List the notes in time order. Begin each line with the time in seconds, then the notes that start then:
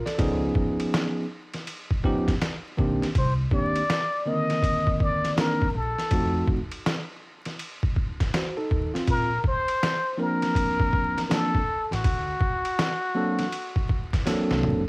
0.06 A4 D5, snare, ride
0.18 C#2 F3 B3 C#4 D#4 G#4, kick, ride
0.55 kick
0.80 ride
0.94 snare, hi-hat pedal, ride
1.54 snare, ride
1.67 ride
1.91 kick
2.04 F3 B3 C#4 D#4 G4, kick
2.28 kick, snare, ride
2.42 snare, hi-hat pedal, ride
2.77 B1 D#3 A#3 C4 D4 G4, kick
3.02 snare, ride
3.15 C2 C5, kick, ride
3.51 D#3 A#3 C4 D4 G4 D5, kick
3.76 ride
3.90 snare, hi-hat pedal, ride
4.26 D3 A#3 C4 A#4 D#5
4.32 D#3
4.50 snare, ride
4.63 kick, ride
4.87 kick
5.00 D5, kick
5.24 snare, ride
5.37 D#3 A#3 C4 D4 A#4, snare, hi-hat pedal, ride
5.62 kick
5.75 A#1 A4
5.99 snare, ride
6.11 F2 F3 A3 C4 D#4 F#4, kick, ride
6.47 kick
6.71 ride
6.86 snare, hi-hat pedal, ride
7.45 snare, ride
7.59 ride
7.83 kick
7.96 kick
8.20 kick, snare, ride
8.34 F#4 C5, snare, hi-hat pedal, ride
8.57 D#4 A4
8.71 D#2, kick
8.94 C4 F4, snare, ride
9.07 A#1 A#4, kick, ride
9.44 C5, kick
9.68 ride
9.83 snare, hi-hat pedal, ride
10.18 F3 A#3 C4 D4 A#4
10.42 snare, ride
10.55 kick, ride
10.80 kick
10.93 kick
11.18 snare, ride
11.29 F3 A#3 C4 D4 A4, snare, hi-hat pedal, ride
11.55 kick
11.91 A1 F#4, snare, ride
12.04 D2, kick, ride
12.41 kick
12.65 ride
12.79 snare, hi-hat pedal, ride
13.15 F#3 A#3 C4 D4 A4
13.39 snare, ride
13.52 ride
13.76 kick
13.89 kick
14.13 kick, snare, ride
14.26 F#3 A#3 C4 D4 A4, snare, hi-hat pedal, ride
14.51 C2, snare
14.63 F#1, mid tom